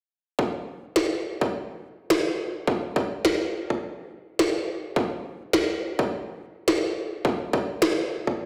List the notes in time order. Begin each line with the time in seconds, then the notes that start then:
0.39 kick
0.96 snare
1.41 kick
2.10 snare
2.67 kick
2.96 kick
3.25 snare
3.70 kick
4.39 snare
4.96 kick
5.53 snare
5.99 kick
6.68 snare
7.25 kick
7.53 kick
7.82 snare
8.27 kick